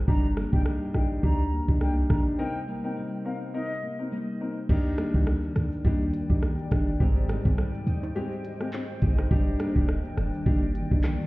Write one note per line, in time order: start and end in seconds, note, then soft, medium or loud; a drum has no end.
0.00 0.36 G3 medium
0.00 0.15 C4 medium
0.08 0.46 G1 loud
0.08 2.39 G2 medium
0.08 0.24 D4 loud
0.08 0.37 D4 medium
0.08 0.25 D#4 medium
0.08 0.25 G4 loud
0.08 0.28 A#5 loud
0.08 kick loud
0.37 0.65 G3 medium
0.37 1.52 A#3 medium
0.37 1.81 D4 medium
0.37 cross-stick loud
0.52 0.64 G1 loud
0.52 0.91 D4 medium
0.52 0.92 D#4 medium
0.52 0.92 G4 medium
0.52 0.62 G5 medium
0.52 kick medium
0.65 1.81 G3 medium
0.65 cross-stick loud
0.94 1.19 A#1 medium
0.94 1.21 D4 medium
0.94 1.21 D#4 medium
0.94 1.21 G4 medium
0.94 1.06 G5 medium
0.94 cross-stick medium
1.23 1.61 D2 loud
1.23 1.40 D4 medium
1.23 1.40 D#4 medium
1.23 1.40 G4 loud
1.23 1.66 A#5 medium
1.23 kick medium
1.52 1.81 A#3 medium
1.68 2.04 C2 medium
1.68 2.07 D4 medium
1.68 2.07 D#4 medium
1.68 2.07 G4 medium
1.68 kick medium
1.81 2.67 G3 medium
1.81 2.68 A#3 medium
1.81 2.39 D4 medium
1.81 1.92 G5 medium
1.81 cross-stick medium
2.10 2.34 A#1 medium
2.10 2.37 D4 medium
2.10 2.37 D#4 medium
2.10 2.37 G4 medium
2.10 2.21 A#5 medium
2.10 kick medium
2.10 cross-stick loud
2.38 4.69 C3 medium
2.38 2.55 C4 loud
2.38 2.55 D#4 medium
2.38 2.68 D#4 medium
2.38 2.56 A#4 loud
2.38 2.59 G5 loud
2.68 2.96 G3 medium
2.68 3.82 A#3 medium
2.68 4.12 D#4 medium
2.84 3.22 C4 medium
2.84 3.22 D#4 medium
2.84 3.22 A#4 medium
2.84 2.93 G5 medium
2.96 4.11 G3 medium
3.25 3.52 C4 medium
3.25 3.52 D#4 medium
3.25 3.52 A#4 medium
3.25 3.37 F5 medium
3.54 3.71 C4 medium
3.54 3.71 D#4 medium
3.54 3.71 A#4 medium
3.54 3.97 D#5 loud
3.83 4.12 A#3 medium
3.99 4.12 C4 medium
3.99 4.13 D#4 medium
3.99 4.13 A#4 medium
4.12 4.98 G3 medium
4.12 4.98 A#3 medium
4.12 4.99 D#4 medium
4.41 4.57 C4 medium
4.41 4.57 D#4 medium
4.41 4.58 A#4 medium
4.69 4.94 D#2 loud
4.69 8.19 D#3 medium
4.69 6.98 D#3 medium
4.69 5.10 D4 medium
4.69 5.11 D#4 medium
4.69 5.11 G4 loud
4.69 6.98 D5 medium
4.69 6.98 G5 medium
4.69 kick loud
4.69 crash loud
4.69 shaker medium
4.85 shaker medium
4.85 shaker soft
4.98 5.26 G3 medium
4.98 5.84 A#3 medium
4.98 5.54 D4 medium
4.98 cross-stick loud
4.98 closed hi-hat medium
4.98 shaker medium
5.14 5.39 D2 medium
5.14 5.28 D4 medium
5.14 5.28 D#4 medium
5.14 5.28 G4 medium
5.14 kick loud
5.14 shaker medium
5.26 5.84 G3 medium
5.26 cross-stick loud
5.26 shaker medium
5.43 shaker soft
5.43 shaker medium
5.56 5.70 D2 loud
5.56 5.85 D4 medium
5.56 cross-stick medium
5.56 closed hi-hat medium
5.56 shaker soft
5.56 shaker medium
5.72 shaker medium
5.84 6.23 D#2 loud
5.84 7.29 G3 medium
5.84 6.41 A#3 medium
5.84 6.01 D4 medium
5.84 6.70 D4 medium
5.84 6.02 D#4 medium
5.84 6.02 G4 loud
5.84 kick medium
5.84 shaker medium
6.01 shaker medium
6.13 closed hi-hat medium
6.13 shaker medium
6.29 6.41 D#2 medium
6.29 6.43 D4 medium
6.29 6.43 D#4 medium
6.29 6.43 G4 medium
6.29 kick medium
6.29 shaker medium
6.42 7.07 A#3 medium
6.42 cross-stick medium
6.42 shaker medium
6.58 shaker soft
6.71 6.96 G1 loud
6.71 6.88 D4 medium
6.71 7.07 D4 medium
6.71 6.88 D#4 medium
6.71 6.88 G4 medium
6.71 kick medium
6.71 cross-stick loud
6.71 closed hi-hat medium
6.71 shaker soft
6.71 shaker medium
6.87 shaker medium
7.00 7.39 G#1 loud
7.00 9.31 G#2 medium
7.00 7.41 G#3 medium
7.00 7.41 C4 medium
7.00 7.42 G4 loud
7.00 9.29 C5 medium
7.00 9.29 D#5 medium
7.00 9.29 G5 medium
7.00 kick loud
7.00 shaker medium
7.16 shaker medium
7.29 7.58 G3 medium
7.29 8.15 C4 medium
7.29 7.86 D#4 medium
7.29 cross-stick loud
7.29 closed hi-hat medium
7.29 shaker medium
7.45 7.56 G#1 medium
7.45 7.59 G#3 medium
7.45 7.59 C4 medium
7.45 7.59 G4 medium
7.45 kick loud
7.45 shaker medium
7.57 8.15 G3 medium
7.57 cross-stick loud
7.57 shaker medium
7.74 shaker soft
7.74 shaker medium
7.87 8.11 D#2 loud
7.87 8.16 D#4 medium
7.87 closed hi-hat medium
7.87 shaker medium
8.03 high timbale medium
8.03 shaker medium
8.15 9.59 G3 medium
8.15 8.32 G#3 medium
8.15 8.32 C4 medium
8.15 8.72 C4 medium
8.15 9.02 D#4 medium
8.15 8.32 G4 loud
8.15 shaker medium
8.32 shaker medium
8.44 closed hi-hat medium
8.44 shaker medium
8.60 8.74 G#3 medium
8.60 8.74 C4 medium
8.60 8.74 G4 medium
8.60 cross-stick medium
8.60 shaker medium
8.73 9.37 C4 medium
8.73 clap medium
8.73 shaker medium
8.89 shaker medium
8.89 shaker soft
9.02 9.27 G#1 loud
9.02 9.19 G#3 medium
9.02 9.19 C4 medium
9.02 9.61 D#4 medium
9.02 9.19 G4 medium
9.02 kick medium
9.02 closed hi-hat medium
9.02 shaker medium
9.02 shaker soft
9.18 cross-stick medium
9.18 high timbale medium
9.18 shaker medium
9.31 9.55 G1 loud
9.31 11.27 G2 medium
9.31 11.27 D#3 medium
9.31 9.72 D4 loud
9.31 9.72 D#4 medium
9.31 9.72 G4 loud
9.31 11.27 D5 medium
9.31 11.27 G5 medium
9.31 kick loud
9.31 shaker medium
9.47 shaker soft
9.47 shaker medium
9.60 9.88 G3 medium
9.60 10.46 A#3 medium
9.60 10.16 D4 medium
9.60 cross-stick loud
9.60 closed hi-hat medium
9.60 shaker medium
9.76 10.00 F1 medium
9.76 9.89 D4 medium
9.76 9.89 D#4 medium
9.76 9.90 G4 medium
9.76 kick loud
9.76 shaker medium
9.88 10.46 G3 medium
9.88 cross-stick loud
9.88 shaker medium
10.05 shaker soft
10.05 shaker medium
10.17 10.31 F1 loud
10.17 10.46 D4 medium
10.17 cross-stick medium
10.17 closed hi-hat medium
10.17 shaker medium
10.34 shaker medium
10.46 10.84 G1 loud
10.46 11.27 G3 medium
10.46 11.03 A#3 medium
10.46 10.63 D4 medium
10.46 11.27 D4 medium
10.46 10.63 D#4 medium
10.46 10.63 G4 loud
10.46 kick loud
10.46 shaker medium
10.63 shaker medium
10.75 closed hi-hat medium
10.75 shaker medium
10.91 11.02 G1 medium
10.91 11.05 D4 medium
10.91 11.05 D#4 medium
10.91 11.05 G4 medium
10.91 kick medium
10.91 shaker medium
11.04 11.27 A#3 medium
11.04 cross-stick medium
11.04 clap medium
11.04 shaker medium
11.20 shaker medium